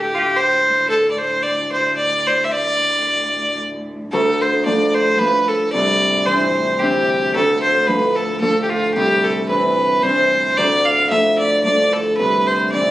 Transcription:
0.00 4.12 D2 medium
0.00 4.12 A2 medium
0.00 0.16 G4 medium
0.14 0.19 F4 medium
0.14 0.38 G4 medium
0.36 0.89 C5 medium
0.90 1.10 A4 medium
1.11 1.20 D5 medium
1.18 1.44 C5 medium
1.43 1.72 D5 medium
1.72 1.95 C5 medium
1.97 2.28 D5 medium
2.27 2.46 C5 medium
2.44 2.53 E5 medium
2.52 3.59 D5 medium
4.12 5.79 D2 medium
4.12 10.58 D2 medium
4.12 10.57 A2 medium
4.12 4.43 A4 medium
4.42 4.65 C5 medium
4.65 5.17 F3 soft
4.65 5.20 A3 soft
4.65 5.22 D4 soft
4.65 4.96 D5 medium
4.94 5.20 C5 medium
5.17 5.79 F3 soft
5.17 7.88 A3 soft
5.17 5.49 B4 medium
5.23 6.26 D4 soft
5.48 5.72 A4 medium
5.72 7.40 C2 medium
5.72 6.27 D5 medium
6.26 6.79 E3 soft
6.26 6.80 C4 soft
6.26 6.81 D4 soft
6.26 6.80 C5 medium
6.79 7.40 E3 soft
6.79 9.49 C4 soft
6.79 7.88 D4 medium
6.79 7.34 G4 medium
7.34 9.01 D2 medium
7.34 7.61 A4 loud
7.62 7.88 C5 medium
7.86 8.41 F3 soft
7.86 8.42 A3 soft
7.86 8.42 D4 soft
7.86 8.17 B4 medium
8.15 8.40 A4 medium
8.40 9.01 F3 soft
8.40 11.11 A3 soft
8.40 9.50 D4 soft
8.40 8.61 A4 loud
8.63 8.71 G4 medium
8.69 8.94 F4 medium
8.94 10.62 C2 medium
8.94 9.25 G4 medium
9.24 9.48 A4 medium
9.49 10.02 E3 soft
9.49 10.03 C4 soft
9.49 10.04 D4 soft
9.49 10.04 B4 medium
10.03 10.62 E3 soft
10.03 12.73 C4 soft
10.03 11.11 D4 soft
10.03 10.59 C5 medium
10.57 12.24 D2 medium
10.57 12.91 D2 medium
10.57 12.91 A2 medium
10.57 10.86 D5 loud
10.85 11.09 F5 medium
11.10 11.64 F3 soft
11.10 11.65 A3 soft
11.10 11.66 D4 soft
11.10 11.37 E5 medium
11.38 11.62 D5 medium
11.64 12.24 F3 soft
11.64 12.91 A3 soft
11.64 12.73 D4 soft
11.64 11.94 D5 medium
11.93 12.17 A4 medium
12.17 12.91 C2 medium
12.17 12.48 B4 medium
12.47 12.71 C5 medium
12.72 12.91 E3 soft
12.72 12.91 C4 soft
12.72 12.91 D4 soft
12.72 12.91 D5 medium

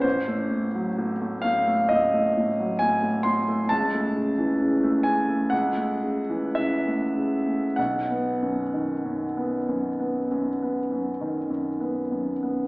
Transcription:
0.01 1.86 A1 soft
0.01 1.43 C5 medium
0.28 0.66 A3 soft
0.51 0.89 A2 soft
0.75 1.12 F#3 soft
0.98 1.35 A2 soft
1.21 1.58 A3 soft
1.42 1.81 A2 soft
1.42 1.89 F5 medium
1.67 2.04 A3 soft
1.89 2.27 A2 soft
1.89 2.80 D#5 medium
2.13 2.50 A3 soft
2.37 2.72 A2 soft
2.60 2.95 F#3 soft
2.79 3.17 A2 soft
2.79 3.25 G#5 medium
3.03 3.39 A3 soft
3.23 3.62 A2 soft
3.23 3.70 C6 medium
3.49 3.72 A3 soft
3.69 5.48 C#2 medium
3.69 5.05 A5 medium
3.94 4.30 A3 soft
4.17 4.52 C#3 soft
4.38 4.74 E3 soft
4.62 4.97 C#3 soft
4.83 5.19 A3 soft
5.03 5.43 C#3 soft
5.03 5.51 G#5 medium
5.29 5.52 A3 soft
5.50 7.75 C#2 medium
5.50 6.56 F#5 medium
5.77 6.18 A3 soft
6.04 6.46 C#3 soft
6.29 6.75 E3 soft
6.55 7.04 C#3 soft
6.55 7.77 E5 medium
6.87 7.35 A3 soft
7.17 7.66 C#3 soft
7.47 7.78 A3 soft
7.76 10.27 B1 soft
7.76 11.48 F#5 medium
8.10 8.61 B3 soft
8.42 8.93 F#2 soft
8.74 9.24 D#3 soft
9.05 9.56 F#2 soft
9.37 9.87 B3 soft
9.69 10.18 F#2 soft
10.00 10.49 B3 soft
10.31 10.79 F#2 soft
10.63 11.09 B3 soft
10.92 11.38 F#2 soft
11.21 11.68 D#3 soft
11.50 11.99 F#2 soft
11.80 12.30 B3 soft
12.12 12.60 F#2 soft
12.43 12.68 B3 soft

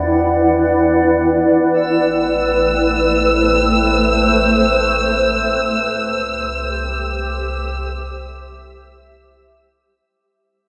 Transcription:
0.00 1.74 E2 medium
0.00 3.44 E4 medium
0.00 5.91 B4 medium
0.00 3.44 D5 medium
0.00 1.78 F#5 medium
0.00 7.56 G5 medium
1.79 5.87 A1 medium
1.79 5.94 A3 medium
1.79 10.09 E6 medium
2.11 7.58 A4 medium
2.57 10.06 C5 medium
5.91 10.00 C2 medium
5.91 10.06 G4 medium
7.77 10.06 E5 medium

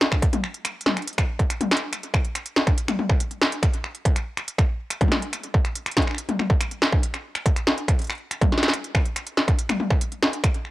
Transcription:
0.01 snare loud
0.12 finger snap medium
0.12 kick medium
0.22 kick loud
0.22 closed hi-hat medium
0.33 closed hi-hat medium
0.33 high tom medium
0.44 finger snap medium
0.54 closed hi-hat soft
0.65 finger snap medium
0.65 closed hi-hat medium
0.81 closed hi-hat medium
0.86 snare loud
0.86 high tom medium
0.97 finger snap medium
0.97 closed hi-hat soft
1.02 closed hi-hat soft
1.08 closed hi-hat medium
1.13 closed hi-hat soft
1.18 finger snap medium
1.18 kick medium
1.18 closed hi-hat medium
1.39 kick medium
1.39 closed hi-hat soft
1.50 finger snap medium
1.50 closed hi-hat medium
1.61 closed hi-hat medium
1.61 high tom loud
1.71 finger snap medium
1.71 snare loud
1.71 closed hi-hat medium
1.77 closed hi-hat medium
1.93 finger snap medium
1.93 closed hi-hat medium
2.03 closed hi-hat soft
2.14 finger snap medium
2.14 kick loud
2.25 closed hi-hat soft
2.35 finger snap medium
2.35 closed hi-hat medium
2.46 closed hi-hat medium
2.56 snare loud
2.67 finger snap medium
2.67 kick loud
2.67 closed hi-hat soft
2.78 closed hi-hat medium
2.88 finger snap medium
2.88 closed hi-hat soft
2.88 high tom loud
2.99 high tom medium
3.09 finger snap medium
3.09 kick loud
3.20 closed hi-hat medium
3.31 closed hi-hat soft
3.42 finger snap medium
3.42 snare loud
3.52 closed hi-hat medium
3.63 finger snap medium
3.63 kick loud
3.63 closed hi-hat medium
3.74 closed hi-hat soft
3.84 finger snap medium
3.95 closed hi-hat soft
4.05 kick loud
4.05 closed hi-hat medium
4.16 finger snap medium
4.16 closed hi-hat medium
4.37 finger snap medium
4.37 closed hi-hat soft
4.48 closed hi-hat medium
4.58 finger snap medium
4.58 kick loud
4.58 closed hi-hat soft
4.90 finger snap medium
4.90 closed hi-hat medium
5.01 kick loud
5.01 closed hi-hat soft
5.01 high tom medium
5.08 finger snap medium
5.08 snare loud
5.08 high tom medium
5.15 high tom medium
5.22 closed hi-hat medium
5.33 finger snap medium
5.33 closed hi-hat medium
5.43 closed hi-hat soft
5.54 kick loud
5.65 finger snap medium
5.65 closed hi-hat soft
5.75 closed hi-hat medium
5.86 finger snap medium
5.86 closed hi-hat medium
5.91 closed hi-hat soft
5.97 kick loud
5.97 snare loud
5.97 closed hi-hat soft
6.02 closed hi-hat soft
6.07 finger snap soft
6.11 finger snap soft
6.15 finger snap soft
6.15 closed hi-hat medium
6.29 closed hi-hat soft
6.29 high tom medium
6.39 finger snap medium
6.39 high tom medium
6.50 kick loud
6.61 finger snap medium
6.61 closed hi-hat medium
6.71 closed hi-hat soft
6.82 finger snap medium
6.82 snare loud
6.92 kick loud
7.03 closed hi-hat medium
7.14 finger snap soft
7.14 closed hi-hat soft
7.35 finger snap medium
7.35 closed hi-hat soft
7.46 kick loud
7.46 closed hi-hat medium
7.56 finger snap medium
7.56 closed hi-hat medium
7.67 snare loud
7.78 closed hi-hat soft
7.88 finger snap medium
7.88 kick loud
7.88 closed hi-hat medium
7.99 closed hi-hat soft
8.02 closed hi-hat soft
8.04 closed hi-hat soft
8.07 finger snap medium
8.07 closed hi-hat soft
8.10 closed hi-hat soft
8.15 closed hi-hat soft
8.18 closed hi-hat soft
8.31 finger snap medium
8.31 closed hi-hat medium
8.41 kick loud
8.41 closed hi-hat soft
8.41 high tom medium
8.52 snare medium
8.58 snare medium
8.63 finger snap medium
8.63 snare medium
8.63 closed hi-hat medium
8.68 snare loud
8.74 finger snap soft
8.74 closed hi-hat medium
8.84 closed hi-hat soft
8.95 finger snap medium
8.95 kick loud
9.05 closed hi-hat soft
9.16 finger snap medium
9.16 closed hi-hat medium
9.27 closed hi-hat medium
9.37 snare loud
9.48 finger snap soft
9.48 kick loud
9.48 closed hi-hat soft
9.59 closed hi-hat medium
9.69 finger snap medium
9.69 closed hi-hat soft
9.69 high tom loud
9.80 high tom medium
9.90 finger snap medium
9.90 kick loud
10.01 closed hi-hat medium
10.12 closed hi-hat soft
10.23 finger snap medium
10.23 snare loud
10.33 closed hi-hat medium
10.44 finger snap medium
10.44 kick loud
10.44 closed hi-hat medium
10.54 closed hi-hat soft
10.65 finger snap soft

